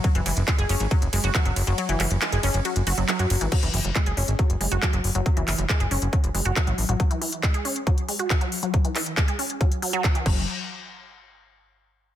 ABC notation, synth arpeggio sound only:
X:1
M:4/4
L:1/16
Q:1/4=138
K:F#m
V:1 name="Synth arpeggio sound" clef=bass
F, E, E, z G, G C z F, z G, F F, F, z F, | F, E, E, z G, G C z F, z F F, F, F z E, | F, E, E, z G, G C z F, z G, F F, F, z F, | F, E, E, z G, G C z F, z G, F F, F, z F, |
F, E, E, z G, G C z F, z G, F F, F, z F, | F, E, E, z G, G C z F, z F, F, F, E, F,2 | z16 |]